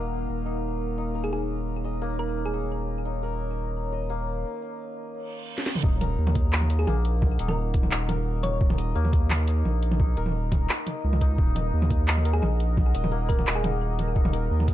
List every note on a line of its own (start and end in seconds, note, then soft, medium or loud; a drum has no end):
0.00 0.27 D#1 medium
0.00 2.01 A#3 medium
0.00 4.45 A#3 medium
0.00 0.45 D#4 medium
0.00 5.80 D#4 medium
0.00 1.15 A#4 medium
0.00 4.45 A#4 medium
0.00 5.80 A#4 medium
0.00 0.25 D#5 medium
0.00 1.84 D#5 medium
0.00 0.27 F#5 medium
0.29 4.45 D#1 medium
0.29 5.80 C#5 medium
0.29 5.82 A#5 medium
0.46 0.97 D#4 medium
0.98 2.53 D#4 medium
1.15 3.22 A#4 medium
1.24 1.29 G#4 medium
1.33 1.38 G#4 medium
1.84 3.92 D#5 medium
2.02 4.09 A#3 loud
2.19 2.40 A#4 medium
2.46 2.94 G#4 medium
2.53 3.05 D#4 medium
3.05 5.83 D#4 medium
3.23 6.00 A#4 medium
3.92 6.30 D#5 medium
4.10 6.87 A#3 medium
5.14 reverse cymbal medium
5.58 snare soft
5.66 snare medium
5.75 mid tom medium
5.83 6.17 D#1 loud
5.83 7.39 D#4 medium
5.83 14.74 D#4 medium
5.83 14.74 A#4 medium
5.83 14.74 D#5 medium
5.83 8.60 F#5 medium
5.83 kick loud
5.83 impact medium
6.01 8.08 A#4 medium
6.01 closed hi-hat medium
6.01 mid tom medium
6.18 6.86 D#2 medium
6.27 mid tom medium
6.35 kick loud
6.35 closed hi-hat medium
6.53 clap loud
6.61 mid tom medium
6.70 8.78 D#5 medium
6.70 closed hi-hat medium
6.79 6.84 G#4 medium
6.87 7.38 A#1 loud
6.87 8.95 A#3 loud
6.87 6.93 G#4 medium
6.87 mid tom medium
7.05 closed hi-hat medium
7.22 kick loud
7.22 mid tom medium
7.39 7.90 D#1 medium
7.39 7.91 D#4 medium
7.39 closed hi-hat medium
7.48 7.69 A#4 medium
7.48 mid tom medium
7.74 kick loud
7.74 closed hi-hat medium
7.83 mid tom medium
7.91 8.60 D#1 loud
7.91 9.47 D#4 medium
7.91 clap loud
8.09 10.17 A#4 medium
8.09 closed hi-hat medium
8.09 mid tom medium
8.43 8.70 C#5 medium
8.43 closed hi-hat medium
8.43 mid tom medium
8.61 8.94 D#1 loud
8.61 11.37 A#5 medium
8.61 kick loud
8.70 mid tom medium
8.78 11.16 D#5 medium
8.78 closed hi-hat medium
8.95 9.64 D#2 loud
8.95 13.11 A#3 loud
9.05 mid tom medium
9.13 kick loud
9.13 closed hi-hat medium
9.30 clap loud
9.30 mid tom medium
9.47 9.99 D#4 medium
9.47 closed hi-hat medium
9.65 10.16 A#1 loud
9.65 mid tom medium
9.83 closed hi-hat medium
9.91 mid tom medium
10.00 11.20 D#4 medium
10.00 kick loud
10.17 10.68 D#1 loud
10.17 12.24 A#4 medium
10.17 closed hi-hat medium
10.26 mid tom soft
10.29 mid tom soft
10.32 mid tom soft
10.52 kick loud
10.52 closed hi-hat medium
10.52 mid tom medium
10.69 clap loud
10.87 closed hi-hat medium
10.87 mid tom medium
11.04 11.37 C#2 loud
11.13 mid tom medium
11.21 11.55 D#4 loud
11.21 kick medium
11.21 closed hi-hat medium
11.38 11.72 D#1 loud
11.38 14.15 F#5 medium
11.38 kick loud
11.55 12.07 D#4 medium
11.55 closed hi-hat medium
11.55 mid tom medium
11.73 12.41 D#2 loud
11.82 mid tom medium
11.90 kick loud
11.90 closed hi-hat medium
12.08 13.63 D#4 medium
12.08 clap loud
12.17 mid tom medium
12.25 14.32 A#4 medium
12.25 closed hi-hat medium
12.33 12.39 G#4 medium
12.42 12.93 A#1 loud
12.42 12.48 G#4 medium
12.42 mid tom medium
12.60 closed hi-hat medium
12.77 kick loud
12.77 mid tom medium
12.94 13.45 D#1 loud
12.94 14.74 D#5 medium
12.94 closed hi-hat medium
13.04 mid tom medium
13.12 14.74 A#3 loud
13.29 13.50 A#4 loud
13.29 kick medium
13.29 closed hi-hat medium
13.39 mid tom medium
13.47 14.15 D#1 loud
13.47 clap loud
13.55 14.04 G#4 medium
13.64 14.15 D#4 medium
13.64 closed hi-hat medium
13.64 mid tom medium
13.99 closed hi-hat medium
13.99 mid tom medium
14.16 14.49 D#1 loud
14.16 14.74 D#4 medium
14.16 14.74 A#5 medium
14.16 kick loud
14.25 mid tom medium
14.33 14.74 A#4 medium
14.33 closed hi-hat medium
14.51 14.74 D#2 loud
14.60 mid tom medium
14.68 kick loud
14.68 closed hi-hat medium